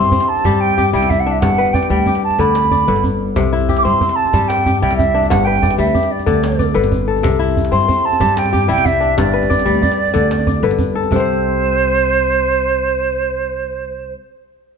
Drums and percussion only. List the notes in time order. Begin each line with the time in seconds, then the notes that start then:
0.05 djembe tone
0.12 djembe bass
0.20 djembe slap
0.29 djembe slap
0.37 djembe slap, djembe tone
0.45 djembe slap, djembe bass
0.70 djembe tone
0.79 djembe bass
1.02 djembe slap, djembe tone
1.10 djembe bass
1.42 djembe slap, djembe bass
1.59 djembe slap
1.67 djembe tone
1.74 djembe bass
1.83 djembe slap
1.99 djembe tone
2.06 djembe bass
2.15 djembe slap
2.31 djembe tone
2.39 djembe slap, djembe bass
2.55 djembe slap
2.63 djembe tone
2.71 djembe bass
2.88 djembe slap
2.96 djembe slap
3.04 djembe bass
3.20 djembe slap
3.28 djembe slap
3.36 djembe slap, djembe bass
3.45 djembe slap
3.61 djembe tone
3.69 djembe slap, djembe bass
3.76 djembe slap
3.93 djembe tone
4.01 djembe bass
4.09 djembe slap
4.17 djembe slap
4.25 djembe slap, djembe tone
4.33 djembe slap, djembe bass
4.50 djembe slap
4.58 djembe tone
4.66 djembe bass
4.91 djembe slap, djembe tone
4.99 djembe bass
5.23 djembe tone
5.31 djembe slap, djembe bass
5.40 djembe slap
5.55 djembe tone
5.63 djembe slap, djembe bass
5.71 djembe slap
5.87 djembe tone
5.95 djembe bass
6.03 djembe slap
6.11 djembe slap
6.19 djembe slap, djembe tone
6.27 djembe slap, djembe bass
6.44 djembe slap
6.52 djembe tone
6.59 djembe bass
6.83 djembe slap, djembe tone
6.92 djembe bass
7.00 djembe slap
7.16 djembe tone
7.24 djembe slap, djembe bass
7.32 djembe slap
7.48 djembe tone
7.57 djembe slap, djembe bass
7.64 djembe slap
7.81 djembe tone
7.89 djembe bass
8.04 djembe slap
8.13 djembe slap, djembe tone
8.20 djembe slap, djembe bass
8.37 djembe slap
8.46 djembe tone
8.54 djembe bass
8.78 djembe slap, djembe tone
8.85 djembe bass
8.94 djembe slap
9.18 djembe slap, djembe bass
9.43 djembe slap, djembe tone
9.51 djembe bass
9.59 djembe slap
9.67 djembe slap
9.75 djembe slap, djembe tone
9.83 djembe bass
9.92 djembe slap
10.08 djembe tone
10.15 djembe slap, djembe bass
10.31 djembe slap
10.39 djembe slap, djembe tone
10.47 djembe bass
10.71 djembe slap
10.79 djembe bass
11.03 djembe slap, djembe tone
11.12 djembe bass